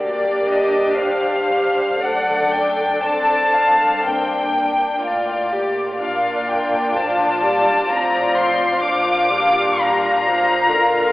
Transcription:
Already playing: G2 A#3 D4 G4 D5
0.47 D#5
0.99 G3 C5 F5
2.00 F#2 A3 D4 A4 D5 F#5
2.51 G5
3.02 G2 C4 D5 A5
3.54 F5
4.03 A#3 C4 D4 G5
4.52 A#3
5.02 A2 F4 D5
5.50 G4
5.99 A#2 A#3 D4 F4 D5 F5
6.48 G5
6.97 F3 A5
7.45 G3
7.90 A2 F3 C4 A#5
8.38 C6
8.85 A#2 F3 D4 F4 F5 D6
9.34 G3
9.80 G3 A#5
10.28 F3
10.75 D3 F4 A#4 F5

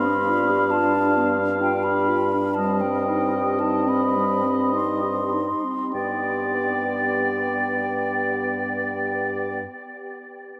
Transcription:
Already playing: G2 D4 F5 B5
0.07 D4
0.29 F4
0.50 G4
0.71 F4 A5
0.95 D4
1.17 B3
1.39 D4
1.61 F4 G5
1.84 G4 B5
2.08 F4
2.34 D4
2.54 G3 C4 D#5 A5
2.81 C4 G5
3.08 D#4
3.35 G4
3.59 D#4 A5
3.87 C4 B5
4.16 G3
4.44 C4
4.72 D#4 C6
5.03 G4
5.34 D#4
5.65 C4
5.93 G2 B3 G4 D5 G5

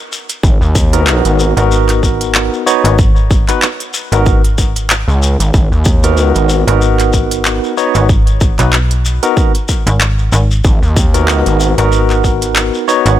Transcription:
0.12 shekere
0.29 closed hi-hat, shekere
0.43 G#1, kick, shekere
0.61 D#2, shekere
0.75 kick, shekere
0.93 B3 D#4 F#4 A#4, cross-stick, closed hi-hat, shekere
1.07 clap, shekere
1.25 G#1, closed hi-hat, shekere
1.39 shekere
1.57 G#1 B3 D#4 F#4 A#4, closed hi-hat, shekere
1.71 shekere
1.89 clap, closed hi-hat, shekere
2.03 kick, shekere
2.21 closed hi-hat, shekere
2.35 clap, shekere
2.53 shekere
2.66 B3 D#4 F#4 C#5, shekere
2.84 G#1, closed hi-hat, shekere
2.98 kick, shekere
3.16 shekere
3.31 kick, shekere
3.48 B3 D#4 F#4 B4, cross-stick, clap, closed hi-hat, shekere
3.62 clap, shekere
3.80 closed hi-hat, shekere
3.94 shekere
4.12 G#1 B3 D#4 F#4 A#4, closed hi-hat, shekere
4.26 kick, shekere
4.44 closed hi-hat, shekere
4.58 kick, shekere
4.76 closed hi-hat, shekere
4.90 clap, shekere
5.08 C#2, shekere
5.22 shekere
5.40 G#1, closed hi-hat, shekere
5.54 kick, shekere
5.72 D#2, shekere
5.85 kick, shekere
6.03 B3 D#4 F#4 A#4, cross-stick, closed hi-hat, shekere
6.15 D2, shekere
6.35 G#1, closed hi-hat, shekere
6.49 shekere
6.67 G#1 B3 D#4 F#4 A#4, closed hi-hat, shekere
6.81 shekere
6.99 clap, closed hi-hat, shekere
7.13 kick, shekere
7.31 closed hi-hat, shekere
7.45 clap, shekere
7.64 shekere
7.77 B3 D#4 F#4 C#5, shekere
7.95 G#1, closed hi-hat, shekere
8.09 kick, shekere
8.27 closed hi-hat, shekere
8.41 kick, shekere
8.59 B1 B3 D#4 F#4 B4, cross-stick, clap, closed hi-hat, shekere
8.73 clap, shekere
8.91 closed hi-hat, shekere
9.05 shekere
9.23 B3 D#4 F#4 A#4, closed hi-hat, shekere
9.37 kick, shekere
9.55 closed hi-hat, shekere
9.68 kick, shekere
9.87 G#1, closed hi-hat, shekere
10.00 clap, shekere
10.18 shekere
10.32 G#1, shekere
10.51 shekere
10.64 G#1, kick, shekere
10.82 D#2, shekere
10.96 kick, shekere
11.14 B3 D#4 F#4 A#4, cross-stick, closed hi-hat, shekere
11.25 D2, clap
11.29 shekere
11.46 G#1, closed hi-hat, shekere
11.60 shekere
11.78 G#1 B3 D#4 F#4 A#4, closed hi-hat, shekere
11.92 shekere
12.10 clap, shekere
12.24 kick, shekere
12.42 closed hi-hat, shekere
12.56 clap, shekere
12.74 shekere
12.88 B3 D#4 F#4 C#5, shekere
13.06 G#1, closed hi-hat, shekere

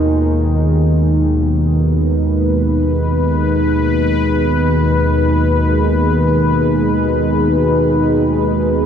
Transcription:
Already playing: D#2 B2 D#3 G#3 D#4 F4
1.48 B4

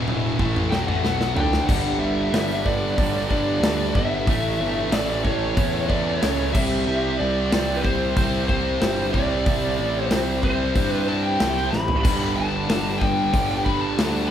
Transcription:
Already playing: E1 E2 B2 E3 E4 A4 E5
0.08 mid tom
0.38 A1 A2 E3 A3, kick
0.56 mid tom
0.70 B1 B2 F#3 G5, snare
0.87 A1 A2 E3 F#5, mid tom
1.02 B1 B2 F#3 B3, snare
1.21 snare
1.35 D2 D3 A3 D4 G5, floor tom
1.53 snare
1.66 G1 G2 D3 G3 B3 D4 G4 D5 F#5 B5, kick, crash
1.99 G1 E5
2.31 G1 G2 D3 G3 B3 D4, snare, open hi-hat
2.50 snare
2.64 G2 D3 G3 B3 D4 D5, kick
2.95 G1 G2 D3 G3 B3 D4, kick, open hi-hat
3.16 snare
3.29 G2 D3 G3 D5, kick
3.60 D2 G2 D3 G3 B3 D4, snare, open hi-hat
3.93 G1 G2 D3 G3 B3 D4 E5, kick
4.25 A1 A2 E3 A3 C#4 E4 A4 E5 C#6, kick, open hi-hat
4.60 G1
4.90 A1 A2 E3 A3 C#4 E4 D5, snare, open hi-hat
5.09 snare
5.23 A2 E3 A3 C#4 E4 C#5, kick
5.55 E2 A2 E3 A3 C#4 E4, kick, open hi-hat
5.88 A2 E3 A3 D5, kick
6.05 D5
6.16 C#5
6.21 C#2 A2 E3 A3 C#4 E4, snare, open hi-hat
6.53 C2 C3 G3 C4 E4 G4 C5 E5, kick, crash
6.58 C4
6.85 C2 C3 G3 C4 E4
7.19 C2 D5
7.51 C2 C3 G3 C4 E4, snare, open hi-hat
7.76 B4
7.83 C3 G3 C4 E4 C5, kick
8.16 C2 C3 G3 C4 E4 C5, kick, open hi-hat
8.48 C3 G3 C4 C5, kick
8.81 G1 C3 G3 C4 E4, snare, open hi-hat
9.13 C2 C3 G3 C4 E4 D5, kick
9.46 C2 C3 G3 C4 E4, kick, open hi-hat
9.79 A1
10.04 C5
10.11 C2 C3 G3 C4 E4, snare, open hi-hat
10.42 C3 G3 C4 E4 C5, kick
10.75 G2 C3 G3 C4 E4, kick, open hi-hat
10.91 B4
11.07 G3 C4 A5
11.12 C3
11.22 G5
11.39 C2 C3 G3 C4 E4, snare, open hi-hat
11.70 A1 C3 G3 C4 E4 B5, snare
11.88 floor tom
12.03 G1 G2 D3 G3 B3 D4 D5 B5, kick, open hi-hat, crash
12.36 G1 A5
12.69 G1 G2 D3 G3 B3 D4, snare, open hi-hat
12.98 G2 D3 G3 G5, kick
13.02 B3 D4
13.34 G1 G2 D3 G3 B3 D4, kick, open hi-hat
13.50 snare
13.65 G2 D3 G3 B5, kick
13.81 A5
13.98 D2 G2 D3 G3 B3 D4, snare, open hi-hat

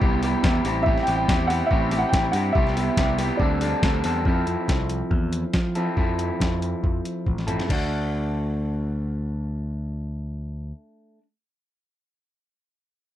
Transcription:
Already playing: E5
0.01 C2 G3 B3 E4 G4, kick
0.23 G3 B3 E4 G4, open hi-hat
0.43 E2 G3 B3 E4 G4, kick, snare
0.65 A1 C4 E4 G4, open hi-hat
0.83 C4 E5, kick
0.87 E4 G4
0.98 snare
1.03 G5, open hi-hat
1.08 A1 C4 E4 G4
1.16 G5
1.28 E2 C4 E4 G4, kick, snare
1.47 C4 E4 G4 F#5, open hi-hat
1.66 E5
1.71 A1 C4 E4 G4, kick
1.91 C4 E4 G4, open hi-hat
1.99 F#5
2.09 A1 C4 E4 G5, kick
2.13 G4, snare
2.32 G2 C4 E4 G4 F#5, open hi-hat
2.53 C2 G3 B3 E4 G4 E5, kick
2.67 snare
2.76 G3 B3 E4 G4, open hi-hat
2.97 C2 G3 B3 E4 G4, kick, snare
3.18 G3 B3 E4 G4, open hi-hat
3.37 D2 G3 C4 D4 A4 D5, kick
3.61 G3 C4 D4 A4, open hi-hat
3.82 D2 G3 C4 D4 A4, kick, snare
4.04 E2 G3 C4 D4 A4, open hi-hat
4.25 F2 F3 C4 E4 A4, kick
4.47 F2, closed hi-hat
4.68 C2, kick, snare
4.89 closed hi-hat
5.11 E2, kick
5.33 closed hi-hat
5.54 F3, kick, snare
5.75 F3 C4 E4 A4, closed hi-hat
5.96 F2 F3 C4 E4 A4, kick
6.19 closed hi-hat
6.40 F2, kick, snare
6.62 closed hi-hat
6.83 F2, kick
7.05 closed hi-hat
7.26 A1, kick
7.38 snare
7.47 F3 C4 E4 A4, closed hi-hat, mid tom
7.60 snare
7.68 D2 A3 D4, kick, crash
7.72 F#4

